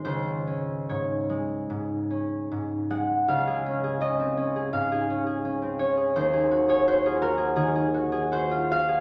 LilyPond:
\new Staff \with { instrumentName = "Harp" } { \time 4/4 \key des \major \tempo 4 = 83 << { c''4 des''2~ des''8 ges''8 | f''4 ees''4 f''4. des''8 | c''8. des''16 c''16 aes'16 bes'8 aes'4 c''8 f''8 | } \\ { <des, aes>8 des'8 aes,8 aes8 aes,8 des'8 aes,8 aes8 | des,16 aes'16 des'16 aes'16 des'16 c'16 des'16 aes'16 aes,16 aes'16 des'16 aes'16 des'16 c'16 des'16 aes'16 | ees,16 aes'16 ges'16 aes'16 ges'16 f'16 ges'16 aes'16 ees16 aes'16 ges'16 aes'16 ges'16 f'16 ges'16 aes'16 | } >> }